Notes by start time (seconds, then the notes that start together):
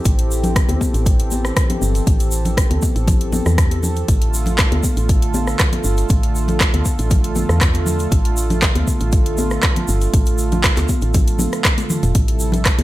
Already playing: E3 C4 G4 A4
0.05 A1, kick, closed hi-hat, shaker
0.19 closed hi-hat
0.31 shaker
0.44 closed hi-hat, low conga, shaker
0.56 kick, cross-stick, closed hi-hat, shaker
0.69 D2, closed hi-hat, high conga
0.81 kick, high conga, shaker
0.94 A1, closed hi-hat, shaker
1.06 kick, closed hi-hat, shaker
1.20 closed hi-hat
1.31 high conga, shaker
1.45 cross-stick, shaker
1.57 kick, cross-stick, closed hi-hat, shaker
1.70 closed hi-hat, high conga, low conga
1.82 G1, shaker
1.95 closed hi-hat, shaker
2.07 A1, kick, closed hi-hat, shaker
2.20 closed hi-hat, shaker
2.31 shaker
2.45 closed hi-hat, low conga, shaker
2.57 kick, cross-stick, closed hi-hat, shaker
2.70 D2, closed hi-hat, high conga
2.82 kick, high conga, shaker
2.96 A1, closed hi-hat, shaker
3.07 kick, closed hi-hat, low conga, shaker
3.21 closed hi-hat
3.32 high conga, low conga, shaker
3.46 E2, cross-stick, shaker
3.58 kick, cross-stick, closed hi-hat, shaker
3.71 closed hi-hat, high conga
3.83 low conga, shaker
3.96 closed hi-hat, shaker
4.08 A1 D3 A3 F4, kick, closed hi-hat, shaker
4.22 closed hi-hat
4.34 shaker
4.46 closed hi-hat, low conga, shaker
4.58 kick, cross-stick, clap, closed hi-hat, shaker
4.72 D2, closed hi-hat, high conga
4.83 kick, high conga, shaker
4.97 A1, closed hi-hat, shaker
5.09 kick, closed hi-hat, shaker
5.22 closed hi-hat
5.34 high conga, shaker
5.47 cross-stick, shaker
5.59 kick, cross-stick, clap, closed hi-hat, shaker
5.72 closed hi-hat, high conga, low conga
5.84 G1, shaker
5.97 closed hi-hat, shaker
6.09 A1, kick, closed hi-hat, shaker
6.23 closed hi-hat
6.35 shaker
6.48 closed hi-hat, low conga, shaker
6.60 kick, cross-stick, clap, closed hi-hat, shaker
6.74 D2, closed hi-hat, high conga
6.85 kick, high conga, shaker
6.99 A1, closed hi-hat, shaker
7.10 kick, closed hi-hat, low conga, shaker
7.24 closed hi-hat
7.35 high conga, low conga, shaker
7.49 E2, cross-stick, shaker
7.61 kick, cross-stick, clap, closed hi-hat, shaker
7.74 closed hi-hat, high conga
7.86 low conga, shaker
7.99 closed hi-hat, shaker
8.12 A1, kick, closed hi-hat, shaker
8.25 closed hi-hat
8.37 shaker
8.50 closed hi-hat, low conga, shaker
8.62 kick, cross-stick, clap, closed hi-hat, shaker
8.75 D2, closed hi-hat, high conga
8.87 kick, high conga, shaker
9.00 A1, closed hi-hat, shaker
9.12 kick, closed hi-hat, shaker
9.26 closed hi-hat
9.38 high conga, shaker
9.50 cross-stick, shaker
9.62 kick, cross-stick, clap, closed hi-hat, shaker
9.76 closed hi-hat, high conga, low conga
9.88 G1, shaker
10.01 closed hi-hat, shaker
10.14 A1, kick, closed hi-hat, shaker
10.26 closed hi-hat, shaker
10.38 shaker
10.52 closed hi-hat, low conga, shaker
10.64 kick, cross-stick, clap, closed hi-hat, shaker
10.77 D2, clap, closed hi-hat, high conga, shaker
10.88 kick, high conga, shaker
11.01 A1, closed hi-hat, shaker
11.14 kick, closed hi-hat, high conga, low conga, shaker
11.27 closed hi-hat, shaker
11.39 high conga, low conga, shaker
11.53 cross-stick, closed hi-hat, shaker
11.65 kick, cross-stick, clap, closed hi-hat, shaker
11.78 closed hi-hat, high tom, high conga, shaker
11.90 mid tom, low conga, shaker
12.03 E1, closed hi-hat, mid tom, shaker
12.15 A1 C3 G3 E4 A4, kick, closed hi-hat, shaker
12.28 closed hi-hat
12.39 shaker
12.52 closed hi-hat, low conga, shaker
12.66 kick, cross-stick, clap, closed hi-hat, shaker
12.79 D2, closed hi-hat, high conga